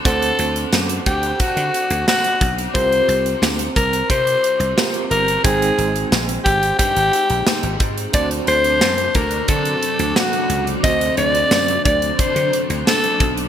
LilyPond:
<<
  \new Staff \with { instrumentName = "Alto saxophone" } { \time 4/4 \key d \phrygian \tempo 4 = 89 a'4 r8 g'8 fis'4 fis'8. r16 | c''4 r8 bes'8 c''4 r8 bes'8 | aes'4 r8 g'8 g'4. r8 | d''8 c''4 bes'8 a'4 fis'8. r16 |
ees''8 d''4 d''8 c''8 r8 a'8. r16 | }
  \new Staff \with { instrumentName = "FM electric piano" } { \time 4/4 \key d \phrygian <c' d' a' c'' fis''>1 | <c' f' g' bes' c''>2. <c' f' g' bes' c''>4 | <aes c' ees' c'' g''>1 | <c' d' fis' c'' a''>1 |
<c' d' fis' a' c''>1 | }
  \new Staff \with { instrumentName = "String machine" } { \time 4/4 \key d \phrygian r1 | r1 | r1 | <fis c' d'>1~ |
<fis c' d'>1 | }
  \new Staff \with { instrumentName = "Overdriven electric guitar" } { \time 4/4 \key d \phrygian <d a d'>4. <a d'>8 <d a d'>4 <d a d'>4 | <c g c'>2 <c g c'>4 <c g c'>4 | <aes, ees aes>2 <aes, ees aes>4 <aes, ees aes>4 | <d a d'>4. <a d'>8 <d a d'>4 <a d'>4 |
<d a d'>2 <d a d'>4 <d a d'>4 | }
  \new Staff \with { instrumentName = "Slap bass" } { \clef bass \time 4/4 \key d \phrygian d,8 d,8 fis,8 d,8 r16 d16 r16 d,16 r8 b,,8 | c,8 c,8 d,8 c,8 c8 r16 c,16 r8 g,,8 | aes,,8 aes,,8 bes,,8 aes,,8 g,16 aes,,16 r16 bes,,16 r16 aes,,16 aes,8 | d,8 d,8 fis,8 d,8 d8 r16 d,16 r8 cis,8 |
d,8 d,8 fis,8 d,8 r16 d16 r16 d,16 r8 b,,8 | }
  \new DrumStaff \with { instrumentName = "Drums" } \drummode { \time 4/4 <hh bd>16 hh16 hh16 hh16 <sn tamb>16 hh16 <hh bd>16 hh16 <hh bd>16 hh16 hh16 hh16 <sn tamb>16 hh16 <hh bd>16 hh16 | <hh bd>16 hh16 hh16 hh16 <sn tamb>16 hh16 <hh bd>16 hh16 <hh bd>16 hh16 hh16 hh16 <sn tamb>16 hh16 hh16 hh16 | <hh bd>16 hh16 hh16 hh16 <sn tamb>16 hh16 <hh bd>16 hh16 <hh bd>16 hh16 hh16 hh16 <sn tamb>16 hh16 <hh bd>16 hh16 | <hh bd>16 hh16 hh16 hh16 <sn tamb>16 hh16 <hh bd>16 hh16 <hh bd>16 hh16 hh16 hh16 <sn tamb>16 hh16 hh16 hh16 |
<hh bd>16 hh16 hh16 hh16 <sn tamb>16 hh16 <hh bd>16 hh16 <hh bd>16 hh16 hh16 hh16 <sn tamb>16 hh16 <hh bd>16 hh16 | }
>>